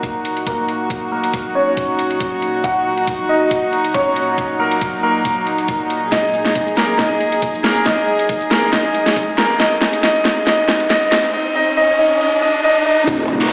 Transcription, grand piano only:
0, 0, Header, 1, 2, 480
1, 0, Start_track
1, 0, Key_signature, -6, "minor"
1, 0, Tempo, 434783
1, 995, Time_signature, 4, 2, 24, 8
1, 14933, End_track
2, 0, Start_track
2, 0, Title_t, "Grand piano"
2, 0, Program_c, 0, 0
2, 0, Note_on_c, 0, 58, 70
2, 0, Note_on_c, 0, 70, 88
2, 426, Note_off_c, 0, 70, 0
2, 427, Note_off_c, 0, 58, 0
2, 515, Note_on_c, 0, 58, 75
2, 515, Note_on_c, 0, 70, 88
2, 1147, Note_off_c, 0, 58, 0
2, 1147, Note_off_c, 0, 70, 0
2, 1234, Note_on_c, 0, 58, 75
2, 1235, Note_on_c, 0, 70, 86
2, 1508, Note_off_c, 0, 58, 0
2, 1508, Note_off_c, 0, 70, 0
2, 1713, Note_on_c, 0, 61, 75
2, 1714, Note_on_c, 0, 73, 94
2, 2826, Note_off_c, 0, 61, 0
2, 2826, Note_off_c, 0, 73, 0
2, 2915, Note_on_c, 0, 66, 70
2, 2915, Note_on_c, 0, 78, 93
2, 3547, Note_off_c, 0, 66, 0
2, 3547, Note_off_c, 0, 78, 0
2, 3633, Note_on_c, 0, 63, 72
2, 3634, Note_on_c, 0, 75, 88
2, 4266, Note_off_c, 0, 63, 0
2, 4266, Note_off_c, 0, 75, 0
2, 4354, Note_on_c, 0, 61, 76
2, 4354, Note_on_c, 0, 73, 91
2, 4986, Note_off_c, 0, 61, 0
2, 4986, Note_off_c, 0, 73, 0
2, 5075, Note_on_c, 0, 58, 74
2, 5075, Note_on_c, 0, 70, 94
2, 5348, Note_off_c, 0, 58, 0
2, 5348, Note_off_c, 0, 70, 0
2, 5555, Note_on_c, 0, 58, 72
2, 5555, Note_on_c, 0, 70, 92
2, 6667, Note_off_c, 0, 58, 0
2, 6667, Note_off_c, 0, 70, 0
2, 6755, Note_on_c, 0, 63, 65
2, 6755, Note_on_c, 0, 75, 85
2, 7387, Note_off_c, 0, 63, 0
2, 7387, Note_off_c, 0, 75, 0
2, 7473, Note_on_c, 0, 70, 87
2, 7474, Note_on_c, 0, 58, 69
2, 7697, Note_off_c, 0, 58, 0
2, 7697, Note_off_c, 0, 70, 0
2, 7715, Note_on_c, 0, 63, 66
2, 7715, Note_on_c, 0, 75, 86
2, 8346, Note_off_c, 0, 63, 0
2, 8347, Note_off_c, 0, 75, 0
2, 8435, Note_on_c, 0, 58, 71
2, 8435, Note_on_c, 0, 70, 89
2, 8657, Note_off_c, 0, 58, 0
2, 8657, Note_off_c, 0, 70, 0
2, 8674, Note_on_c, 0, 63, 69
2, 8674, Note_on_c, 0, 75, 86
2, 9306, Note_off_c, 0, 63, 0
2, 9306, Note_off_c, 0, 75, 0
2, 9395, Note_on_c, 0, 58, 73
2, 9395, Note_on_c, 0, 70, 88
2, 9617, Note_off_c, 0, 58, 0
2, 9617, Note_off_c, 0, 70, 0
2, 9634, Note_on_c, 0, 63, 71
2, 9634, Note_on_c, 0, 75, 89
2, 10266, Note_off_c, 0, 63, 0
2, 10266, Note_off_c, 0, 75, 0
2, 10354, Note_on_c, 0, 58, 74
2, 10354, Note_on_c, 0, 70, 92
2, 10577, Note_off_c, 0, 58, 0
2, 10577, Note_off_c, 0, 70, 0
2, 10595, Note_on_c, 0, 63, 70
2, 10595, Note_on_c, 0, 75, 92
2, 11057, Note_off_c, 0, 63, 0
2, 11057, Note_off_c, 0, 75, 0
2, 11075, Note_on_c, 0, 63, 76
2, 11075, Note_on_c, 0, 75, 93
2, 11537, Note_off_c, 0, 63, 0
2, 11537, Note_off_c, 0, 75, 0
2, 11556, Note_on_c, 0, 63, 75
2, 11556, Note_on_c, 0, 75, 97
2, 12018, Note_off_c, 0, 63, 0
2, 12018, Note_off_c, 0, 75, 0
2, 12036, Note_on_c, 0, 63, 74
2, 12036, Note_on_c, 0, 75, 99
2, 12498, Note_off_c, 0, 63, 0
2, 12498, Note_off_c, 0, 75, 0
2, 12515, Note_on_c, 0, 63, 73
2, 12515, Note_on_c, 0, 75, 96
2, 12737, Note_off_c, 0, 63, 0
2, 12737, Note_off_c, 0, 75, 0
2, 12756, Note_on_c, 0, 63, 80
2, 12756, Note_on_c, 0, 75, 105
2, 12978, Note_off_c, 0, 63, 0
2, 12978, Note_off_c, 0, 75, 0
2, 12995, Note_on_c, 0, 63, 76
2, 12995, Note_on_c, 0, 75, 99
2, 13217, Note_off_c, 0, 75, 0
2, 13218, Note_off_c, 0, 63, 0
2, 13235, Note_on_c, 0, 63, 80
2, 13235, Note_on_c, 0, 75, 103
2, 13457, Note_off_c, 0, 75, 0
2, 13458, Note_off_c, 0, 63, 0
2, 13476, Note_on_c, 0, 63, 73
2, 13476, Note_on_c, 0, 75, 98
2, 13698, Note_off_c, 0, 63, 0
2, 13698, Note_off_c, 0, 75, 0
2, 13715, Note_on_c, 0, 63, 78
2, 13716, Note_on_c, 0, 75, 98
2, 13938, Note_off_c, 0, 63, 0
2, 13938, Note_off_c, 0, 75, 0
2, 13955, Note_on_c, 0, 63, 81
2, 13956, Note_on_c, 0, 75, 105
2, 14177, Note_off_c, 0, 63, 0
2, 14178, Note_off_c, 0, 75, 0
2, 14195, Note_on_c, 0, 63, 80
2, 14195, Note_on_c, 0, 75, 100
2, 14417, Note_off_c, 0, 75, 0
2, 14418, Note_off_c, 0, 63, 0
2, 14933, End_track
0, 0, End_of_file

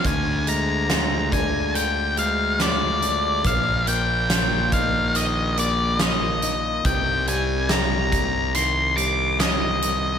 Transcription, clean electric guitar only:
0, 0, Header, 1, 2, 480
1, 0, Start_track
1, 0, Tempo, 851064
1, 25, Time_signature, 4, 2, 24, 8
1, 5745, End_track
2, 0, Start_track
2, 0, Title_t, "Clean electric guitar"
2, 0, Program_c, 0, 27
2, 25, Note_on_c, 0, 50, 55
2, 265, Note_on_c, 0, 56, 55
2, 505, Note_on_c, 0, 65, 55
2, 744, Note_on_c, 0, 62, 53
2, 977, Note_off_c, 0, 50, 0
2, 984, Note_on_c, 0, 50, 57
2, 1217, Note_off_c, 0, 56, 0
2, 1224, Note_on_c, 0, 56, 57
2, 1454, Note_off_c, 0, 65, 0
2, 1461, Note_on_c, 0, 65, 63
2, 1694, Note_off_c, 0, 62, 0
2, 1701, Note_on_c, 0, 62, 52
2, 1941, Note_on_c, 0, 46, 57
2, 1943, Note_off_c, 0, 62, 0
2, 1943, Note_off_c, 0, 65, 0
2, 1944, Note_off_c, 0, 50, 0
2, 1944, Note_off_c, 0, 56, 0
2, 2184, Note_on_c, 0, 58, 57
2, 2425, Note_on_c, 0, 65, 51
2, 2668, Note_on_c, 0, 63, 59
2, 2908, Note_on_c, 0, 51, 58
2, 3141, Note_off_c, 0, 58, 0
2, 3143, Note_off_c, 0, 46, 0
2, 3147, Note_on_c, 0, 58, 57
2, 3376, Note_off_c, 0, 65, 0
2, 3383, Note_on_c, 0, 65, 69
2, 3624, Note_off_c, 0, 63, 0
2, 3627, Note_on_c, 0, 63, 55
2, 3860, Note_on_c, 0, 48, 61
2, 3863, Note_off_c, 0, 65, 0
2, 3865, Note_off_c, 0, 51, 0
2, 3865, Note_off_c, 0, 58, 0
2, 4103, Note_on_c, 0, 55, 64
2, 4342, Note_on_c, 0, 67, 56
2, 4827, Note_on_c, 0, 51, 61
2, 5057, Note_off_c, 0, 55, 0
2, 5059, Note_on_c, 0, 55, 59
2, 5601, Note_off_c, 0, 63, 0
2, 5745, Note_off_c, 0, 48, 0
2, 5745, Note_off_c, 0, 51, 0
2, 5745, Note_off_c, 0, 55, 0
2, 5745, Note_off_c, 0, 67, 0
2, 5745, End_track
0, 0, End_of_file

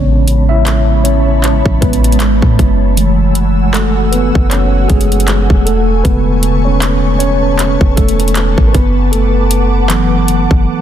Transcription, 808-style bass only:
0, 0, Header, 1, 2, 480
1, 0, Start_track
1, 0, Key_signature, 3, "major"
1, 0, Tempo, 769231
1, 1855, Time_signature, 4, 2, 24, 8
1, 6749, End_track
2, 0, Start_track
2, 0, Title_t, "808-style bass"
2, 0, Program_c, 0, 38
2, 0, Note_on_c, 0, 33, 104
2, 1010, Note_off_c, 0, 33, 0
2, 1035, Note_on_c, 0, 33, 99
2, 1131, Note_off_c, 0, 33, 0
2, 1137, Note_on_c, 0, 33, 99
2, 1379, Note_on_c, 0, 32, 101
2, 1389, Note_off_c, 0, 33, 0
2, 1510, Note_off_c, 0, 32, 0
2, 1514, Note_on_c, 0, 45, 99
2, 1611, Note_off_c, 0, 45, 0
2, 1618, Note_on_c, 0, 30, 102
2, 2691, Note_off_c, 0, 30, 0
2, 2718, Note_on_c, 0, 30, 101
2, 3043, Note_off_c, 0, 30, 0
2, 3057, Note_on_c, 0, 30, 99
2, 3420, Note_off_c, 0, 30, 0
2, 3433, Note_on_c, 0, 28, 95
2, 3761, Note_off_c, 0, 28, 0
2, 3776, Note_on_c, 0, 28, 102
2, 4850, Note_off_c, 0, 28, 0
2, 4875, Note_on_c, 0, 28, 99
2, 4971, Note_off_c, 0, 28, 0
2, 4977, Note_on_c, 0, 28, 98
2, 5340, Note_off_c, 0, 28, 0
2, 5355, Note_on_c, 0, 32, 91
2, 5451, Note_off_c, 0, 32, 0
2, 5458, Note_on_c, 0, 30, 104
2, 6531, Note_off_c, 0, 30, 0
2, 6559, Note_on_c, 0, 30, 94
2, 6654, Note_off_c, 0, 30, 0
2, 6749, End_track
0, 0, End_of_file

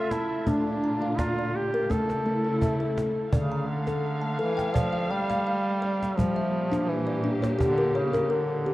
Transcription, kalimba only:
0, 0, Header, 1, 2, 480
1, 0, Start_track
1, 0, Tempo, 714286
1, 313, Time_signature, 4, 2, 24, 8
1, 5872, End_track
2, 0, Start_track
2, 0, Title_t, "Kalimba"
2, 0, Program_c, 0, 108
2, 0, Note_on_c, 0, 57, 69
2, 0, Note_on_c, 0, 69, 67
2, 0, Note_on_c, 0, 76, 62
2, 83, Note_on_c, 0, 81, 55
2, 200, Note_off_c, 0, 76, 0
2, 204, Note_off_c, 0, 69, 0
2, 283, Note_off_c, 0, 57, 0
2, 314, Note_on_c, 0, 57, 72
2, 318, Note_on_c, 0, 62, 72
2, 446, Note_off_c, 0, 81, 0
2, 556, Note_off_c, 0, 62, 0
2, 562, Note_on_c, 0, 82, 53
2, 683, Note_on_c, 0, 77, 54
2, 795, Note_off_c, 0, 82, 0
2, 801, Note_on_c, 0, 74, 61
2, 803, Note_on_c, 0, 82, 53
2, 925, Note_off_c, 0, 74, 0
2, 933, Note_on_c, 0, 74, 54
2, 1036, Note_off_c, 0, 77, 0
2, 1167, Note_off_c, 0, 82, 0
2, 1170, Note_on_c, 0, 70, 66
2, 1256, Note_off_c, 0, 57, 0
2, 1276, Note_on_c, 0, 57, 76
2, 1279, Note_off_c, 0, 70, 0
2, 1281, Note_off_c, 0, 74, 0
2, 1406, Note_on_c, 0, 69, 47
2, 1509, Note_off_c, 0, 57, 0
2, 1517, Note_on_c, 0, 57, 67
2, 1635, Note_off_c, 0, 69, 0
2, 1644, Note_on_c, 0, 69, 54
2, 1756, Note_off_c, 0, 57, 0
2, 1757, Note_on_c, 0, 76, 56
2, 1875, Note_off_c, 0, 69, 0
2, 1883, Note_on_c, 0, 69, 61
2, 2123, Note_off_c, 0, 69, 0
2, 2124, Note_off_c, 0, 76, 0
2, 2234, Note_on_c, 0, 50, 76
2, 2234, Note_on_c, 0, 74, 72
2, 2362, Note_on_c, 0, 82, 52
2, 2475, Note_off_c, 0, 74, 0
2, 2601, Note_on_c, 0, 69, 69
2, 2715, Note_off_c, 0, 82, 0
2, 2833, Note_on_c, 0, 81, 61
2, 2841, Note_off_c, 0, 69, 0
2, 2951, Note_on_c, 0, 69, 69
2, 3072, Note_on_c, 0, 79, 59
2, 3187, Note_on_c, 0, 74, 82
2, 3190, Note_off_c, 0, 81, 0
2, 3192, Note_off_c, 0, 69, 0
2, 3311, Note_on_c, 0, 77, 51
2, 3424, Note_off_c, 0, 79, 0
2, 3430, Note_off_c, 0, 74, 0
2, 3432, Note_on_c, 0, 79, 55
2, 3551, Note_off_c, 0, 77, 0
2, 3559, Note_on_c, 0, 77, 77
2, 3666, Note_off_c, 0, 77, 0
2, 3674, Note_on_c, 0, 77, 59
2, 3799, Note_off_c, 0, 79, 0
2, 3912, Note_on_c, 0, 74, 75
2, 4040, Note_off_c, 0, 77, 0
2, 4125, Note_off_c, 0, 50, 0
2, 4150, Note_on_c, 0, 55, 76
2, 4152, Note_off_c, 0, 74, 0
2, 4273, Note_on_c, 0, 76, 58
2, 4391, Note_off_c, 0, 55, 0
2, 4513, Note_on_c, 0, 62, 77
2, 4629, Note_off_c, 0, 76, 0
2, 4751, Note_on_c, 0, 74, 61
2, 4755, Note_off_c, 0, 62, 0
2, 4865, Note_on_c, 0, 62, 77
2, 4989, Note_on_c, 0, 73, 64
2, 5098, Note_on_c, 0, 67, 83
2, 5107, Note_off_c, 0, 74, 0
2, 5108, Note_off_c, 0, 62, 0
2, 5228, Note_on_c, 0, 70, 62
2, 5336, Note_off_c, 0, 73, 0
2, 5344, Note_off_c, 0, 67, 0
2, 5345, Note_on_c, 0, 73, 65
2, 5459, Note_off_c, 0, 70, 0
2, 5467, Note_on_c, 0, 70, 76
2, 5570, Note_off_c, 0, 70, 0
2, 5578, Note_on_c, 0, 70, 63
2, 5714, Note_off_c, 0, 73, 0
2, 5822, Note_on_c, 0, 67, 73
2, 5872, Note_off_c, 0, 67, 0
2, 5872, Note_off_c, 0, 70, 0
2, 5872, End_track
0, 0, End_of_file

